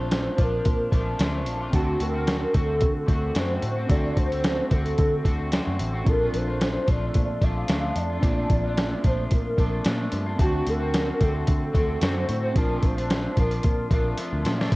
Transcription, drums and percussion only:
0.11 snare loud
0.11 closed hi-hat medium
0.38 kick medium
0.38 closed hi-hat medium
0.65 kick medium
0.65 closed hi-hat medium
0.92 kick medium
0.92 closed hi-hat medium
1.19 snare loud
1.19 closed hi-hat loud
1.46 closed hi-hat medium
1.73 kick loud
1.73 closed hi-hat medium
2.00 closed hi-hat medium
2.27 snare loud
2.27 closed hi-hat medium
2.54 kick medium
2.54 closed hi-hat medium
2.81 kick medium
2.81 closed hi-hat medium
3.08 kick medium
3.08 closed hi-hat medium
3.35 snare loud
3.35 closed hi-hat loud
3.62 closed hi-hat medium
3.89 kick loud
3.89 closed hi-hat medium
4.17 kick medium
4.17 closed hi-hat medium
4.32 closed hi-hat soft
4.44 snare loud
4.44 closed hi-hat medium
4.71 kick medium
4.71 closed hi-hat medium
4.86 closed hi-hat soft
4.98 kick medium
4.98 closed hi-hat medium
5.25 kick medium
5.25 closed hi-hat medium
5.52 snare loud
5.52 closed hi-hat loud
5.79 closed hi-hat medium
6.06 kick loud
6.06 closed hi-hat medium
6.34 closed hi-hat medium
6.61 snare medium
6.61 closed hi-hat medium
6.88 kick medium
6.88 closed hi-hat medium
7.14 kick medium
7.14 closed hi-hat medium
7.42 kick medium
7.42 closed hi-hat soft
7.68 snare loud
7.68 closed hi-hat loud
7.96 closed hi-hat medium
8.23 kick loud
8.23 closed hi-hat medium
8.50 kick medium
8.50 closed hi-hat medium
8.77 snare loud
8.77 closed hi-hat medium
9.04 kick medium
9.04 closed hi-hat medium
9.31 kick medium
9.31 closed hi-hat medium
9.58 kick medium
9.58 closed hi-hat medium
9.85 snare loud
9.85 closed hi-hat loud
10.12 closed hi-hat medium
10.39 kick loud
10.39 closed hi-hat medium
10.67 closed hi-hat medium
10.94 snare loud
10.94 closed hi-hat medium
11.21 kick medium
11.21 closed hi-hat medium
11.47 kick medium
11.47 closed hi-hat medium
11.75 kick medium
11.75 closed hi-hat medium
12.01 snare loud
12.01 closed hi-hat loud
12.29 closed hi-hat medium
12.56 kick loud
12.56 closed hi-hat medium
12.83 kick medium
12.83 closed hi-hat medium
12.98 closed hi-hat soft
13.10 snare loud
13.10 closed hi-hat medium
13.37 kick medium
13.37 closed hi-hat medium
13.51 closed hi-hat soft
13.63 kick medium
13.63 closed hi-hat medium
13.91 kick medium
13.91 closed hi-hat medium
14.18 closed hi-hat loud
14.45 snare medium
14.45 closed hi-hat medium
14.61 snare medium
14.72 kick loud
14.72 closed hi-hat medium
14.72 crash medium

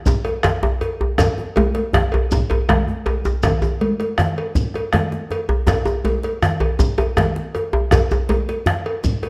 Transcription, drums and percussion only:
0.06 bombo low loud
0.06 djembe slap medium
0.06 djembe tone medium
0.06 shekere medium
0.25 bombo rim soft
0.25 cowbell medium
0.25 djembe tone medium
0.25 high conga soft
0.43 bombo rim loud
0.43 cowbell medium
0.43 djembe slap medium
0.43 djembe slap soft
0.43 low conga medium
0.43 djembe bass medium
0.43 shekere soft
0.63 djembe slap medium
0.63 djembe tone medium
0.63 high conga soft
0.81 bombo rim soft
0.81 cowbell medium
0.81 djembe slap soft
0.81 djembe tone medium
1.01 djembe tone medium
1.01 high conga soft
1.18 bombo rim loud
1.18 bombo low loud
1.18 cowbell medium
1.18 djembe slap medium
1.18 djembe bass medium
1.18 low conga medium
1.18 shekere medium
1.38 djembe tone medium
1.56 cowbell medium
1.56 djembe tone loud
1.56 high conga medium
1.75 bombo rim soft
1.75 cowbell medium
1.75 djembe slap medium
1.75 high conga soft
1.93 bombo rim loud
1.93 djembe tone medium
1.93 djembe bass medium
1.93 low conga medium
2.12 cowbell medium
2.12 djembe slap soft
2.12 djembe tone medium
2.31 bombo rim soft
2.31 bombo low loud
2.31 djembe slap medium
2.31 djembe tone medium
2.31 shekere medium
2.50 cowbell soft
2.50 djembe slap soft
2.50 djembe tone medium
2.50 high conga soft
2.69 bombo rim loud
2.69 cowbell soft
2.69 djembe slap soft
2.69 high conga medium
2.69 djembe tone loud
2.69 djembe bass medium
2.69 low conga medium
2.87 djembe bass soft
3.06 bombo rim soft
3.06 cowbell soft
3.06 djembe slap soft
3.06 djembe tone medium
3.25 djembe slap medium
3.25 djembe tone medium
3.25 shekere soft
3.43 bombo rim loud
3.43 bombo low loud
3.43 cowbell medium
3.43 djembe slap medium
3.43 djembe tone medium
3.43 djembe bass medium
3.43 low conga medium
3.43 shekere medium
3.62 djembe tone medium
3.62 shekere soft
3.63 djembe tone medium
3.81 cowbell soft
3.81 high conga medium
4.00 cowbell soft
4.00 djembe slap medium
4.18 bombo rim loud
4.18 djembe tone medium
4.18 djembe bass medium
4.18 low conga medium
4.18 shekere soft
4.38 cowbell soft
4.55 bombo low loud
4.55 djembe slap medium
4.55 shekere medium
4.74 bombo rim soft
4.74 cowbell soft
4.74 djembe tone medium
4.74 high conga soft
4.93 bombo rim loud
4.93 cowbell medium
4.93 high conga medium
4.93 low conga medium
4.93 djembe bass medium
5.12 djembe slap medium
5.12 high conga soft
5.31 bombo rim soft
5.31 cowbell medium
5.31 djembe slap soft
5.31 djembe tone medium
5.49 djembe tone medium
5.49 high conga soft
5.67 bombo rim loud
5.67 bombo low loud
5.67 cowbell medium
5.67 djembe slap medium
5.67 djembe tone medium
5.67 djembe bass medium
5.67 low conga medium
5.67 shekere medium
5.85 djembe tone medium
5.85 shekere soft
6.05 cowbell medium
6.05 djembe tone medium
6.05 high conga medium
6.23 cowbell soft
6.23 djembe slap medium
6.42 bombo rim loud
6.42 djembe tone medium
6.42 djembe bass medium
6.42 low conga medium
6.42 shekere soft
6.60 cowbell soft
6.60 djembe tone medium
6.79 bombo low loud
6.79 djembe slap medium
6.79 djembe tone medium
6.79 shekere medium
6.98 bombo rim soft
6.98 cowbell medium
6.98 djembe tone medium
6.98 high conga soft
7.17 bombo rim loud
7.17 cowbell medium
7.17 djembe slap soft
7.17 djembe tone medium
7.17 high conga medium
7.17 djembe bass medium
7.17 low conga medium
7.17 shekere soft
7.36 djembe slap medium
7.36 high conga soft
7.55 bombo rim soft
7.55 cowbell medium
7.55 djembe slap soft
7.55 djembe tone medium
7.73 djembe tone medium
7.73 high conga soft
7.91 bombo rim medium
7.91 bombo low medium
7.91 cowbell medium
7.91 djembe slap medium
7.91 djembe tone medium
7.91 djembe bass medium
7.91 low conga medium
7.91 shekere medium
8.11 djembe tone medium
8.11 shekere soft
8.29 cowbell medium
8.29 high conga medium
8.29 djembe tone medium
8.49 cowbell soft
8.49 djembe slap medium
8.66 bombo rim loud
8.66 djembe tone medium
8.66 djembe bass medium
8.66 low conga medium
8.86 cowbell medium
9.04 bombo low loud
9.04 djembe slap medium
9.04 shekere medium
9.23 bombo rim soft
9.23 cowbell medium
9.23 djembe tone medium
9.23 high conga soft

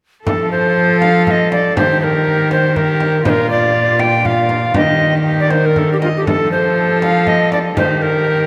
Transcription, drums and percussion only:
0.27 frame drum medium
1.02 frame drum soft
1.27 frame drum soft
1.52 frame drum soft
1.77 frame drum medium
2.51 frame drum soft
2.76 frame drum soft
3.00 frame drum soft
3.25 frame drum medium
4.00 frame drum medium
4.25 frame drum soft
4.49 frame drum soft
4.74 frame drum medium
5.50 frame drum soft
5.76 frame drum soft
6.02 frame drum soft
6.27 frame drum medium
7.02 frame drum medium
7.27 frame drum soft
7.52 frame drum soft
7.77 frame drum medium

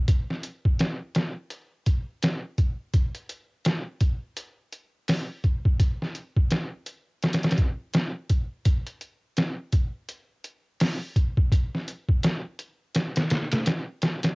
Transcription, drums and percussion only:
0.08 kick loud
0.08 closed hi-hat medium
0.30 snare soft
0.43 closed hi-hat medium
0.65 kick loud
0.79 snare loud
0.79 closed hi-hat medium
1.15 snare loud
1.15 closed hi-hat medium
1.50 closed hi-hat medium
1.86 kick medium
1.86 closed hi-hat medium
2.23 snare loud
2.23 closed hi-hat loud
2.58 kick loud
2.58 closed hi-hat medium
2.94 kick loud
2.94 closed hi-hat medium
3.15 closed hi-hat soft
3.29 closed hi-hat medium
3.65 snare loud
3.65 closed hi-hat medium
4.01 kick medium
4.01 closed hi-hat medium
4.37 closed hi-hat medium
4.73 closed hi-hat medium
5.08 snare loud
5.08 open hi-hat medium
5.44 kick loud
5.44 closed hi-hat medium
5.65 kick loud
5.80 kick loud
5.80 closed hi-hat medium
6.02 snare soft
6.15 closed hi-hat medium
6.37 kick loud
6.51 snare loud
6.51 closed hi-hat medium
6.86 closed hi-hat medium
7.23 snare medium
7.23 closed hi-hat medium
7.33 snare medium
7.33 closed hi-hat medium
7.43 snare loud
7.43 closed hi-hat medium
7.51 snare medium
7.51 closed hi-hat medium
7.58 kick loud
7.58 closed hi-hat medium
7.93 snare loud
7.93 closed hi-hat loud
8.29 kick medium
8.29 closed hi-hat medium
8.65 kick loud
8.65 closed hi-hat medium
8.87 closed hi-hat soft
9.01 closed hi-hat medium
9.37 snare loud
9.37 closed hi-hat medium
9.72 kick loud
9.72 closed hi-hat medium
10.08 closed hi-hat medium
10.44 closed hi-hat medium
10.80 snare loud
10.80 open hi-hat medium
11.16 kick loud
11.16 closed hi-hat medium
11.37 kick loud
11.52 kick loud
11.52 closed hi-hat medium
11.75 snare soft
11.88 closed hi-hat medium
12.09 kick medium
12.23 snare loud
12.23 closed hi-hat medium
12.59 closed hi-hat medium
12.95 snare loud
12.95 closed hi-hat medium
13.16 snare loud
13.16 closed hi-hat medium
13.30 snare loud
13.30 closed hi-hat medium
13.52 snare loud
13.52 closed hi-hat medium
13.66 snare loud
13.66 closed hi-hat loud
14.02 snare loud
14.02 closed hi-hat medium
14.23 snare loud
14.23 closed hi-hat medium

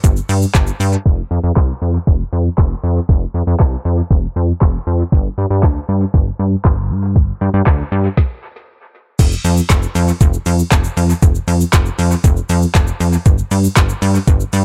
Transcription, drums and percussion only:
0.04 kick loud
0.04 closed hi-hat medium
0.04 shaker medium
0.17 shaker soft
0.29 open hi-hat medium
0.29 shaker medium
0.42 shaker medium
0.54 kick loud
0.54 snare loud
0.54 clap loud
0.54 closed hi-hat medium
0.54 shaker medium
0.67 shaker medium
0.80 open hi-hat medium
0.80 shaker medium
0.93 shaker medium
1.06 kick loud
1.06 crash medium
1.56 kick loud
1.56 snare medium
1.56 clap loud
2.07 kick loud
2.58 kick loud
2.58 snare medium
2.58 clap loud
3.09 kick loud
3.59 kick loud
3.59 snare medium
3.59 clap loud
4.11 kick loud
4.61 kick loud
4.61 snare medium
4.61 clap loud
5.12 kick loud
5.63 kick loud
5.63 snare medium
5.63 clap loud
6.14 kick loud
6.64 kick loud
6.64 snare medium
6.64 clap loud
7.16 kick loud
7.66 kick loud
7.66 snare medium
7.66 clap loud
8.17 kick loud
8.17 snare medium
9.19 kick loud
9.19 closed hi-hat medium
9.19 crash loud
9.19 shaker medium
9.32 shaker medium
9.45 open hi-hat medium
9.45 shaker medium
9.57 shaker medium
9.69 kick loud
9.69 snare loud
9.69 clap loud
9.69 closed hi-hat medium
9.69 shaker medium
9.83 shaker medium
9.95 open hi-hat medium
9.95 shaker medium
10.08 shaker medium
10.21 kick loud
10.21 closed hi-hat medium
10.21 shaker medium
10.34 shaker soft
10.46 open hi-hat medium
10.46 shaker medium
10.59 shaker medium
10.71 kick loud
10.71 snare medium
10.71 clap loud
10.71 closed hi-hat medium
10.71 shaker medium
10.84 shaker medium
10.97 open hi-hat medium
10.97 shaker soft
11.10 shaker medium
11.22 kick loud
11.22 closed hi-hat medium
11.22 shaker medium
11.35 shaker medium
11.48 open hi-hat medium
11.48 shaker medium
11.60 shaker medium
11.73 kick loud
11.73 snare medium
11.73 clap loud
11.73 closed hi-hat medium
11.73 shaker loud
11.86 shaker medium
11.99 open hi-hat medium
11.99 shaker medium
12.11 shaker medium
12.24 kick loud
12.24 closed hi-hat medium
12.24 shaker medium
12.37 shaker soft
12.49 open hi-hat medium
12.49 shaker medium
12.62 shaker medium
12.74 kick loud
12.74 snare medium
12.74 clap loud
12.74 closed hi-hat medium
12.74 shaker medium
12.87 shaker medium
13.01 open hi-hat medium
13.01 shaker medium
13.13 shaker medium
13.26 kick loud
13.26 closed hi-hat medium
13.26 shaker medium
13.38 shaker medium
13.51 open hi-hat medium
13.51 shaker medium
13.64 shaker medium
13.76 kick loud
13.76 snare medium
13.76 clap loud
13.76 closed hi-hat medium
13.76 shaker medium
13.89 shaker medium
14.02 open hi-hat medium
14.02 shaker medium
14.15 shaker medium
14.28 kick loud
14.28 closed hi-hat medium
14.28 shaker medium
14.40 shaker soft
14.53 open hi-hat medium
14.53 shaker medium

